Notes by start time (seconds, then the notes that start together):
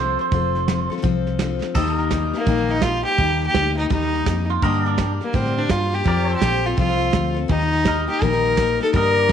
Already playing: C2 F3 C4 F4 A4 C5
0.00 A4
0.19 C5, snare
0.31 F1 F3 C4 F4 A4, kick, snare
0.55 snare
0.68 F3 C4 F4 A4, snare, hi-hat pedal
0.90 C4 F4 A4, snare
0.98 snare
1.02 C2 F3 C4 F4 A4, kick, snare
1.27 snare
1.39 F3 C4 F4 A4, snare, hi-hat pedal
1.62 snare
1.74 D#2 D#3 G3 A#3 D#4 G4 A4 D#5, kick, snare, crash
1.86 snare
1.95 A#4, snare
2.10 G3 A#3 D#4 G4, kick, snare, hi-hat pedal
2.33 A#3 D#4 G4, snare
2.46 A#1 D#3 G3 A#3 D#4 G4, kick, snare
2.58 snare
2.69 D#4, snare
2.82 G3 A#3 D#4 F4, kick, snare, hi-hat pedal
2.86 G4
3.05 G4, snare
3.18 D#2 D#3 G3 A#3 D#4 G4, kick, snare
3.30 snare
3.42 snare
3.47 G4
3.54 D2 G3 A#3 D#4 G4, kick, snare, hi-hat pedal
3.78 A#3 D#4 G4, snare
3.90 D#2 D#3 G3 A#3 D#4 G4, kick, snare
4.02 snare
4.14 snare
4.26 F2 G3 A#3 D#4 G4, kick, snare, hi-hat pedal
4.49 F4, snare
4.62 G2 D3 G3 A#3 D4 G4 A#4 D#5, kick, snare
4.74 snare
4.85 D4 D5, snare
4.98 G3 A#3 D4 G4, kick, snare, hi-hat pedal
5.20 G3 A#3 D4 G4, snare
5.33 G2 A2 D3 G3 C4 D4 G4, kick, snare
5.45 snare
5.57 D4, snare
5.69 G2 G3 A#3 D4 F4 G4, kick, snare, hi-hat pedal
5.93 G3 A#3 D4 G4, snare
6.04 F2 F3 C4 F4 A4 A#4, kick, snare
6.08 D5
6.17 snare
6.28 A4, snare
6.33 G4 C5
6.41 A#1 F3 C4 F4 A4, kick, snare, hi-hat pedal
6.64 C4 F4 A4, snare
6.77 C2 F3 C4 F4 A4, kick, snare
6.89 snare
7.00 snare
7.12 D2 F3 C4 F4 A4, kick, snare, hi-hat pedal
7.34 C4 F4 A4, snare
7.48 D#2 D#3 G3 A#3 D#4 G4, kick, snare
7.61 snare
7.72 snare
7.84 G3 A#3 D#4 G4 A#4, kick, snare, hi-hat pedal
7.89 D#5
8.08 A#3 D#4 G4, snare
8.21 A#1 D#3 G3 A#3 D#4 G4 A#4, kick, snare
8.33 snare
8.45 snare
8.57 G3 A#3 D#4, kick, snare, hi-hat pedal
8.61 G4
8.80 A#3 D#4 G4 A4, snare
8.93 G2 D3 G3 A#3 D4 G4 A#4 D#5, kick, snare
9.05 snare
9.17 D5, snare
9.28 G3, snare, hi-hat pedal